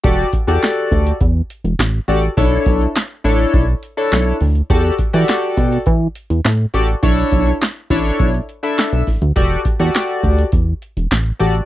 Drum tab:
HH |x-xxx-xxx-xxx-ox|x-xxx-xxx-xxx-ox|x-xxx-xxx-xxx-ox|xxxxxxxxxxxxxxox|
CP |----x-------x---|----x-------x---|----x-------x---|----x-------x---|
SD |----o-------o---|----o-------o---|----o-------o---|----o-------o---|
BD |o-o---o-o-------|o-o-----o-------|o-o---o-o-------|o-o---o-o-----o-|

HH |x-xxx-xxx-xxx-ox|
CP |----x-------x---|
SD |----o-------o---|
BD |o-o---o-o-------|